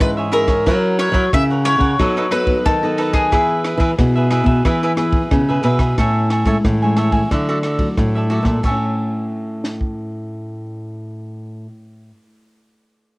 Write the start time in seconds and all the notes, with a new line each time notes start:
Already playing: C#4 E4 G#4 C#5 E5
0.00 G#2 E3 B4, kick, cross-stick, ride
0.17 G#4 C#5 E5
0.32 C#4 E4 G#4 A#4 C#5 E5, ride
0.47 G#4 C#5 E5, kick, cross-stick, ride
0.66 F#3 C#4 E4 A#4 C#5 F#5, kick, cross-stick, ride
0.99 E4 A#4 C#5 F#5, cross-stick, ride
1.12 F#3 E4 A#4 C#5 F#5, kick, ride
1.33 C#3 C#4 E4 A#4 E5, kick, cross-stick, ride
1.50 A#4 C#5 F#5
1.65 C#4 E4 A#4 C#5 F#5, cross-stick, ride
1.78 C#3 A#4 C#5 F#5, kick, ride
1.99 F#3 B3 D#4 A4 B4 D#5, kick, cross-stick, ride
2.17 D#4 A4 B4 D#5
2.31 B3 D#4 A4 B4 D#5, cross-stick, ride
2.46 B3 D#4 A4, kick, ride
2.65 D#3 F#3 A4, kick, cross-stick, ride
2.82 B3 D#4 A4 B4 D#5
2.98 D#4 A4 B4 D#5, ride
3.13 G#4 A4 B4 D#5, kick, cross-stick, ride
3.31 E3 B3 E4 G#4 B4 E5, kick, cross-stick, ride
3.64 E4 G#4 B4 E5, cross-stick, ride
3.77 E3 E4 G#4 B4 E5, kick, ride
3.98 B2 B3 E4 G#4, kick, cross-stick, ride
4.16 G#4 B4 E5
4.30 B3 E4 G#4 B4 E5, cross-stick, ride
4.44 B2 G#4 B4 E5, kick, ride
4.65 E3 E4 G#4 B4 E5, kick, cross-stick, ride
4.83 E4 G#4 B4 E5
4.96 B3 E4 G#4 B4 E5, cross-stick, ride
5.12 kick, ride
5.31 B2 C#3 B3 E4 G#4, kick, cross-stick, ride
5.49 B3 E4 G#4 B4 E5
5.63 B2 E4 G#4 B4 E5, ride
5.79 G#4 B4 E5, kick, cross-stick, ride
5.98 A2 C#4 E4 A4 C#5 E5 G#5, kick, cross-stick, ride
6.30 A4 C#5 E5 G#5, cross-stick, ride
6.45 G#3 C#4 E4 A4 C#5 E5 G#5, kick, ride
6.65 A2 E3, kick, cross-stick, ride
6.82 G#3 C#4 E4 C#5 E5 G#5
6.97 A4 C#5 E5 G#5, cross-stick, ride
7.12 C#5 E5 G#5, kick, ride
7.31 D3 F#3 A3 E4 F#4 A4 D5 E5, kick, cross-stick, ride
7.49 F#4 A4 D5 E5
7.63 F#4 A4 D5 E5, cross-stick, ride
7.79 F#3 A3 E4, kick, ride
7.98 A2, kick, cross-stick, ride
8.15 A4 D5 E5
8.30 F#3 A3 E4 F#4 A4 D5 E5, ride
8.43 A#2 D5 E5, kick, cross-stick, ride
8.47 A4
8.60 A2 A4, crash
8.64 A2 C#5 E5 G#5, kick
8.71 C#4
8.75 E4
9.64 snare
9.81 kick